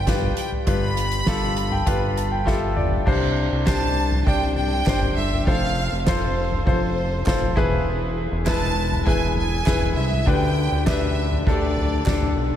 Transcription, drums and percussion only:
0.07 kick, snare, closed hi-hat
0.22 floor tom
0.37 closed hi-hat
0.52 floor tom
0.67 kick, closed hi-hat
0.97 closed hi-hat
1.12 closed hi-hat
1.26 kick, snare, closed hi-hat
1.57 closed hi-hat
1.72 floor tom
1.87 kick, closed hi-hat
2.17 closed hi-hat
2.47 kick, snare
2.77 mid tom
2.92 floor tom
3.07 kick, crash
3.37 ride
3.67 kick, snare, clap
3.97 ride
4.12 floor tom
4.27 kick, ride
4.57 floor tom, ride
4.86 kick, snare, clap, ride
5.02 floor tom
5.17 ride
5.32 floor tom
5.47 kick, ride
5.77 ride
6.07 kick, snare, clap, ride
6.37 ride
6.52 floor tom
6.67 kick, ride
6.98 ride
7.26 kick, snare, clap, ride
7.42 floor tom
7.57 kick
7.72 floor tom
7.87 ride
8.17 ride
8.47 kick, snare, clap, ride
8.77 ride
8.92 floor tom
9.07 kick, ride
9.37 floor tom, ride
9.66 kick, snare, clap, ride
9.82 floor tom
9.97 ride
10.12 floor tom
10.27 kick, ride
10.57 ride
10.87 kick, snare, clap
11.17 ride
11.32 floor tom
11.47 kick, ride
11.77 floor tom, ride
12.06 kick, snare, clap, ride
12.22 floor tom
12.37 ride
12.52 floor tom

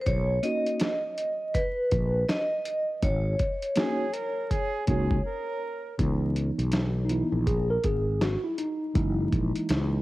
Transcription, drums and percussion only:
0.06 kick, closed hi-hat
0.43 closed hi-hat
0.66 closed hi-hat
0.79 snare, closed hi-hat
1.18 closed hi-hat
1.55 kick, closed hi-hat
1.92 kick, closed hi-hat
2.29 snare, closed hi-hat
2.66 closed hi-hat
3.03 kick, closed hi-hat
3.39 kick, closed hi-hat
3.62 closed hi-hat
3.76 snare, closed hi-hat
4.14 closed hi-hat
4.51 kick, closed hi-hat
4.87 kick, closed hi-hat
5.11 kick
5.99 kick, closed hi-hat
6.36 closed hi-hat
6.59 closed hi-hat
6.72 snare, closed hi-hat
7.10 closed hi-hat
7.47 kick, closed hi-hat
7.84 kick, closed hi-hat
8.21 snare, closed hi-hat
8.58 closed hi-hat
8.95 kick, closed hi-hat
9.32 kick, closed hi-hat
9.55 closed hi-hat
9.69 snare, closed hi-hat

